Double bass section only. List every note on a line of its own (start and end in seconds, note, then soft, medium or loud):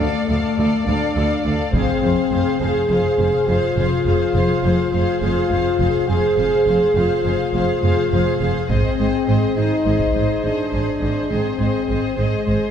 0.29 0.37 D2 soft
0.57 0.65 D2 soft
0.87 0.95 D2 medium
1.16 1.24 D2 medium
1.44 1.52 D2 soft
1.73 1.81 F1 medium
2.03 2.11 F1 medium
2.32 2.40 F1 medium
2.61 2.69 F1 soft
2.90 2.98 F1 soft
3.19 3.27 F1 medium
3.47 3.55 F1 medium
3.77 3.85 F1 medium
4.06 4.14 F1 medium
4.35 4.43 F1 medium
4.64 4.72 F1 medium
4.93 5.01 F1 medium
5.22 5.30 F1 medium
5.51 5.59 F1 medium
5.79 5.87 F1 medium
6.09 6.17 F1 medium
6.38 6.46 F1 soft
6.67 6.75 F1 medium
6.95 7.03 F1 medium
7.24 7.32 F1 medium
7.54 7.62 F1 medium
7.82 7.90 F1 soft
8.12 8.20 F1 medium
8.41 8.49 F1 medium
8.70 8.78 G#1 medium
8.99 9.07 G#1 soft
9.28 9.36 G#1 soft
9.56 9.64 G#1 soft
9.86 9.94 G#1 soft
10.15 10.23 G#1 soft
10.44 10.52 G#1 soft
10.73 10.81 G#1 soft
11.02 11.10 G#1 soft
11.31 11.39 G#1 soft
11.59 11.67 G#1 soft
11.89 11.97 G#1 soft
12.18 12.26 G#1 soft
12.47 12.55 G#1 soft